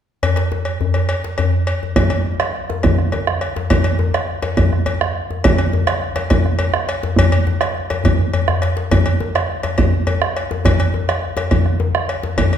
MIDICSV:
0, 0, Header, 1, 4, 480
1, 0, Start_track
1, 0, Tempo, 289436
1, 375, Time_signature, 12, 3, 24, 8
1, 20861, End_track
2, 0, Start_track
2, 0, Title_t, "Bombo"
2, 3250, Note_on_c, 9, 37, 29
2, 3250, Note_on_c, 9, 43, 90
2, 3416, Note_off_c, 9, 37, 0
2, 3416, Note_off_c, 9, 43, 0
2, 3976, Note_on_c, 9, 37, 65
2, 4142, Note_off_c, 9, 37, 0
2, 4468, Note_on_c, 9, 37, 26
2, 4634, Note_off_c, 9, 37, 0
2, 4709, Note_on_c, 9, 37, 27
2, 4709, Note_on_c, 9, 43, 88
2, 4875, Note_off_c, 9, 37, 0
2, 4875, Note_off_c, 9, 43, 0
2, 4949, Note_on_c, 9, 37, 28
2, 5115, Note_off_c, 9, 37, 0
2, 5429, Note_on_c, 9, 37, 66
2, 5595, Note_off_c, 9, 37, 0
2, 6146, Note_on_c, 9, 37, 27
2, 6146, Note_on_c, 9, 43, 84
2, 6312, Note_off_c, 9, 37, 0
2, 6312, Note_off_c, 9, 43, 0
2, 6874, Note_on_c, 9, 37, 61
2, 7039, Note_off_c, 9, 37, 0
2, 7352, Note_on_c, 9, 37, 25
2, 7518, Note_off_c, 9, 37, 0
2, 7581, Note_on_c, 9, 37, 25
2, 7581, Note_on_c, 9, 43, 85
2, 7747, Note_off_c, 9, 37, 0
2, 7747, Note_off_c, 9, 43, 0
2, 7839, Note_on_c, 9, 37, 30
2, 8005, Note_off_c, 9, 37, 0
2, 8311, Note_on_c, 9, 37, 67
2, 8477, Note_off_c, 9, 37, 0
2, 9038, Note_on_c, 9, 37, 30
2, 9038, Note_on_c, 9, 43, 99
2, 9204, Note_off_c, 9, 37, 0
2, 9204, Note_off_c, 9, 43, 0
2, 9739, Note_on_c, 9, 37, 66
2, 9905, Note_off_c, 9, 37, 0
2, 10219, Note_on_c, 9, 37, 27
2, 10385, Note_off_c, 9, 37, 0
2, 10461, Note_on_c, 9, 37, 26
2, 10461, Note_on_c, 9, 43, 85
2, 10627, Note_off_c, 9, 37, 0
2, 10627, Note_off_c, 9, 43, 0
2, 10709, Note_on_c, 9, 37, 28
2, 10874, Note_off_c, 9, 37, 0
2, 11171, Note_on_c, 9, 37, 69
2, 11337, Note_off_c, 9, 37, 0
2, 11881, Note_on_c, 9, 43, 83
2, 12047, Note_off_c, 9, 43, 0
2, 12616, Note_on_c, 9, 37, 64
2, 12782, Note_off_c, 9, 37, 0
2, 13355, Note_on_c, 9, 43, 88
2, 13521, Note_off_c, 9, 43, 0
2, 14061, Note_on_c, 9, 37, 64
2, 14227, Note_off_c, 9, 37, 0
2, 14792, Note_on_c, 9, 37, 25
2, 14792, Note_on_c, 9, 43, 84
2, 14958, Note_off_c, 9, 37, 0
2, 14958, Note_off_c, 9, 43, 0
2, 15517, Note_on_c, 9, 37, 66
2, 15683, Note_off_c, 9, 37, 0
2, 15994, Note_on_c, 9, 37, 26
2, 16160, Note_off_c, 9, 37, 0
2, 16225, Note_on_c, 9, 37, 27
2, 16225, Note_on_c, 9, 43, 85
2, 16391, Note_off_c, 9, 37, 0
2, 16391, Note_off_c, 9, 43, 0
2, 16943, Note_on_c, 9, 37, 70
2, 17109, Note_off_c, 9, 37, 0
2, 17663, Note_on_c, 9, 37, 28
2, 17663, Note_on_c, 9, 43, 88
2, 17829, Note_off_c, 9, 37, 0
2, 17829, Note_off_c, 9, 43, 0
2, 18390, Note_on_c, 9, 37, 59
2, 18556, Note_off_c, 9, 37, 0
2, 18863, Note_on_c, 9, 37, 28
2, 19029, Note_off_c, 9, 37, 0
2, 19093, Note_on_c, 9, 37, 23
2, 19093, Note_on_c, 9, 43, 78
2, 19259, Note_off_c, 9, 37, 0
2, 19259, Note_off_c, 9, 43, 0
2, 19331, Note_on_c, 9, 37, 27
2, 19497, Note_off_c, 9, 37, 0
2, 19814, Note_on_c, 9, 37, 65
2, 19980, Note_off_c, 9, 37, 0
2, 20538, Note_on_c, 9, 37, 26
2, 20538, Note_on_c, 9, 43, 73
2, 20704, Note_off_c, 9, 37, 0
2, 20704, Note_off_c, 9, 43, 0
2, 20861, End_track
3, 0, Start_track
3, 0, Title_t, "Djembe"
3, 380, Note_on_c, 9, 64, 76
3, 546, Note_off_c, 9, 64, 0
3, 616, Note_on_c, 9, 62, 63
3, 782, Note_off_c, 9, 62, 0
3, 858, Note_on_c, 9, 63, 72
3, 1024, Note_off_c, 9, 63, 0
3, 1338, Note_on_c, 9, 64, 71
3, 1504, Note_off_c, 9, 64, 0
3, 1597, Note_on_c, 9, 63, 55
3, 1763, Note_off_c, 9, 63, 0
3, 1827, Note_on_c, 9, 62, 20
3, 1993, Note_off_c, 9, 62, 0
3, 2063, Note_on_c, 9, 62, 54
3, 2229, Note_off_c, 9, 62, 0
3, 2302, Note_on_c, 9, 63, 66
3, 2302, Note_on_c, 9, 64, 68
3, 2468, Note_off_c, 9, 63, 0
3, 2468, Note_off_c, 9, 64, 0
3, 3035, Note_on_c, 9, 63, 47
3, 3201, Note_off_c, 9, 63, 0
3, 3273, Note_on_c, 9, 64, 62
3, 3439, Note_off_c, 9, 64, 0
3, 3991, Note_on_c, 9, 62, 18
3, 4156, Note_off_c, 9, 62, 0
3, 4474, Note_on_c, 9, 62, 52
3, 4474, Note_on_c, 9, 63, 52
3, 4640, Note_off_c, 9, 62, 0
3, 4640, Note_off_c, 9, 63, 0
3, 4716, Note_on_c, 9, 64, 62
3, 4882, Note_off_c, 9, 64, 0
3, 5198, Note_on_c, 9, 63, 69
3, 5364, Note_off_c, 9, 63, 0
3, 5910, Note_on_c, 9, 62, 56
3, 5910, Note_on_c, 9, 63, 55
3, 6076, Note_off_c, 9, 62, 0
3, 6076, Note_off_c, 9, 63, 0
3, 6143, Note_on_c, 9, 64, 69
3, 6309, Note_off_c, 9, 64, 0
3, 6617, Note_on_c, 9, 63, 75
3, 6783, Note_off_c, 9, 63, 0
3, 6868, Note_on_c, 9, 62, 20
3, 7034, Note_off_c, 9, 62, 0
3, 7340, Note_on_c, 9, 62, 53
3, 7340, Note_on_c, 9, 63, 58
3, 7506, Note_off_c, 9, 62, 0
3, 7506, Note_off_c, 9, 63, 0
3, 7590, Note_on_c, 9, 64, 64
3, 7755, Note_off_c, 9, 64, 0
3, 8069, Note_on_c, 9, 63, 68
3, 8234, Note_off_c, 9, 63, 0
3, 8798, Note_on_c, 9, 63, 57
3, 8964, Note_off_c, 9, 63, 0
3, 9037, Note_on_c, 9, 64, 66
3, 9203, Note_off_c, 9, 64, 0
3, 9509, Note_on_c, 9, 63, 70
3, 9675, Note_off_c, 9, 63, 0
3, 9749, Note_on_c, 9, 62, 21
3, 9915, Note_off_c, 9, 62, 0
3, 10211, Note_on_c, 9, 62, 53
3, 10211, Note_on_c, 9, 63, 53
3, 10377, Note_off_c, 9, 62, 0
3, 10377, Note_off_c, 9, 63, 0
3, 10461, Note_on_c, 9, 64, 68
3, 10627, Note_off_c, 9, 64, 0
3, 10937, Note_on_c, 9, 63, 64
3, 11103, Note_off_c, 9, 63, 0
3, 11665, Note_on_c, 9, 62, 59
3, 11665, Note_on_c, 9, 63, 59
3, 11831, Note_off_c, 9, 62, 0
3, 11831, Note_off_c, 9, 63, 0
3, 11893, Note_on_c, 9, 62, 22
3, 11893, Note_on_c, 9, 64, 72
3, 12059, Note_off_c, 9, 62, 0
3, 12059, Note_off_c, 9, 64, 0
3, 12387, Note_on_c, 9, 62, 22
3, 12387, Note_on_c, 9, 63, 69
3, 12553, Note_off_c, 9, 62, 0
3, 12553, Note_off_c, 9, 63, 0
3, 12860, Note_on_c, 9, 62, 22
3, 13026, Note_off_c, 9, 62, 0
3, 13110, Note_on_c, 9, 62, 55
3, 13110, Note_on_c, 9, 63, 57
3, 13276, Note_off_c, 9, 62, 0
3, 13276, Note_off_c, 9, 63, 0
3, 13332, Note_on_c, 9, 62, 22
3, 13332, Note_on_c, 9, 64, 66
3, 13498, Note_off_c, 9, 62, 0
3, 13498, Note_off_c, 9, 64, 0
3, 13585, Note_on_c, 9, 64, 40
3, 13751, Note_off_c, 9, 64, 0
3, 13825, Note_on_c, 9, 64, 47
3, 13991, Note_off_c, 9, 64, 0
3, 14071, Note_on_c, 9, 64, 49
3, 14236, Note_off_c, 9, 64, 0
3, 14315, Note_on_c, 9, 62, 55
3, 14480, Note_off_c, 9, 62, 0
3, 14540, Note_on_c, 9, 62, 58
3, 14706, Note_off_c, 9, 62, 0
3, 14782, Note_on_c, 9, 64, 67
3, 14948, Note_off_c, 9, 64, 0
3, 15265, Note_on_c, 9, 63, 68
3, 15431, Note_off_c, 9, 63, 0
3, 15509, Note_on_c, 9, 62, 20
3, 15675, Note_off_c, 9, 62, 0
3, 15985, Note_on_c, 9, 62, 55
3, 15985, Note_on_c, 9, 63, 54
3, 16150, Note_off_c, 9, 62, 0
3, 16150, Note_off_c, 9, 63, 0
3, 16227, Note_on_c, 9, 64, 63
3, 16393, Note_off_c, 9, 64, 0
3, 16701, Note_on_c, 9, 63, 63
3, 16867, Note_off_c, 9, 63, 0
3, 17429, Note_on_c, 9, 62, 53
3, 17429, Note_on_c, 9, 63, 55
3, 17595, Note_off_c, 9, 62, 0
3, 17595, Note_off_c, 9, 63, 0
3, 17656, Note_on_c, 9, 64, 65
3, 17822, Note_off_c, 9, 64, 0
3, 18142, Note_on_c, 9, 63, 65
3, 18307, Note_off_c, 9, 63, 0
3, 18372, Note_on_c, 9, 62, 22
3, 18538, Note_off_c, 9, 62, 0
3, 18850, Note_on_c, 9, 62, 54
3, 18850, Note_on_c, 9, 63, 59
3, 19016, Note_off_c, 9, 62, 0
3, 19016, Note_off_c, 9, 63, 0
3, 19095, Note_on_c, 9, 64, 67
3, 19261, Note_off_c, 9, 64, 0
3, 19567, Note_on_c, 9, 63, 78
3, 19733, Note_off_c, 9, 63, 0
3, 20290, Note_on_c, 9, 62, 58
3, 20290, Note_on_c, 9, 63, 55
3, 20456, Note_off_c, 9, 62, 0
3, 20456, Note_off_c, 9, 63, 0
3, 20525, Note_on_c, 9, 64, 75
3, 20691, Note_off_c, 9, 64, 0
3, 20861, End_track
4, 0, Start_track
4, 0, Title_t, "Drums"
4, 381, Note_on_c, 9, 56, 59
4, 546, Note_off_c, 9, 56, 0
4, 600, Note_on_c, 9, 56, 41
4, 765, Note_off_c, 9, 56, 0
4, 1081, Note_on_c, 9, 56, 40
4, 1247, Note_off_c, 9, 56, 0
4, 1560, Note_on_c, 9, 56, 43
4, 1726, Note_off_c, 9, 56, 0
4, 1804, Note_on_c, 9, 56, 50
4, 1970, Note_off_c, 9, 56, 0
4, 2284, Note_on_c, 9, 56, 45
4, 2450, Note_off_c, 9, 56, 0
4, 2770, Note_on_c, 9, 56, 45
4, 2936, Note_off_c, 9, 56, 0
4, 3252, Note_on_c, 9, 56, 60
4, 3418, Note_off_c, 9, 56, 0
4, 3484, Note_on_c, 9, 56, 49
4, 3650, Note_off_c, 9, 56, 0
4, 3978, Note_on_c, 9, 56, 42
4, 4144, Note_off_c, 9, 56, 0
4, 4697, Note_on_c, 9, 56, 48
4, 4863, Note_off_c, 9, 56, 0
4, 5178, Note_on_c, 9, 56, 42
4, 5344, Note_off_c, 9, 56, 0
4, 5659, Note_on_c, 9, 56, 40
4, 5825, Note_off_c, 9, 56, 0
4, 6140, Note_on_c, 9, 56, 57
4, 6306, Note_off_c, 9, 56, 0
4, 6372, Note_on_c, 9, 56, 46
4, 6538, Note_off_c, 9, 56, 0
4, 6870, Note_on_c, 9, 56, 40
4, 7035, Note_off_c, 9, 56, 0
4, 7338, Note_on_c, 9, 56, 45
4, 7503, Note_off_c, 9, 56, 0
4, 7582, Note_on_c, 9, 56, 50
4, 7748, Note_off_c, 9, 56, 0
4, 8061, Note_on_c, 9, 56, 49
4, 8227, Note_off_c, 9, 56, 0
4, 9025, Note_on_c, 9, 56, 68
4, 9191, Note_off_c, 9, 56, 0
4, 9261, Note_on_c, 9, 56, 54
4, 9427, Note_off_c, 9, 56, 0
4, 9736, Note_on_c, 9, 56, 50
4, 9902, Note_off_c, 9, 56, 0
4, 10212, Note_on_c, 9, 56, 49
4, 10378, Note_off_c, 9, 56, 0
4, 10451, Note_on_c, 9, 56, 55
4, 10617, Note_off_c, 9, 56, 0
4, 10923, Note_on_c, 9, 56, 54
4, 11089, Note_off_c, 9, 56, 0
4, 11421, Note_on_c, 9, 56, 55
4, 11587, Note_off_c, 9, 56, 0
4, 11918, Note_on_c, 9, 56, 65
4, 12084, Note_off_c, 9, 56, 0
4, 12144, Note_on_c, 9, 56, 56
4, 12310, Note_off_c, 9, 56, 0
4, 12625, Note_on_c, 9, 56, 45
4, 12790, Note_off_c, 9, 56, 0
4, 13104, Note_on_c, 9, 56, 45
4, 13270, Note_off_c, 9, 56, 0
4, 13349, Note_on_c, 9, 56, 55
4, 13515, Note_off_c, 9, 56, 0
4, 13823, Note_on_c, 9, 56, 50
4, 13989, Note_off_c, 9, 56, 0
4, 14294, Note_on_c, 9, 56, 44
4, 14460, Note_off_c, 9, 56, 0
4, 14785, Note_on_c, 9, 56, 55
4, 14950, Note_off_c, 9, 56, 0
4, 15020, Note_on_c, 9, 56, 43
4, 15186, Note_off_c, 9, 56, 0
4, 15510, Note_on_c, 9, 56, 42
4, 15676, Note_off_c, 9, 56, 0
4, 15977, Note_on_c, 9, 56, 41
4, 16143, Note_off_c, 9, 56, 0
4, 16215, Note_on_c, 9, 56, 51
4, 16381, Note_off_c, 9, 56, 0
4, 16699, Note_on_c, 9, 56, 52
4, 16864, Note_off_c, 9, 56, 0
4, 17190, Note_on_c, 9, 56, 44
4, 17356, Note_off_c, 9, 56, 0
4, 17671, Note_on_c, 9, 56, 64
4, 17837, Note_off_c, 9, 56, 0
4, 17907, Note_on_c, 9, 56, 52
4, 18073, Note_off_c, 9, 56, 0
4, 18389, Note_on_c, 9, 56, 45
4, 18555, Note_off_c, 9, 56, 0
4, 18862, Note_on_c, 9, 56, 47
4, 19028, Note_off_c, 9, 56, 0
4, 19090, Note_on_c, 9, 56, 47
4, 19256, Note_off_c, 9, 56, 0
4, 20052, Note_on_c, 9, 56, 43
4, 20218, Note_off_c, 9, 56, 0
4, 20527, Note_on_c, 9, 56, 57
4, 20693, Note_off_c, 9, 56, 0
4, 20778, Note_on_c, 9, 56, 39
4, 20861, Note_off_c, 9, 56, 0
4, 20861, End_track
0, 0, End_of_file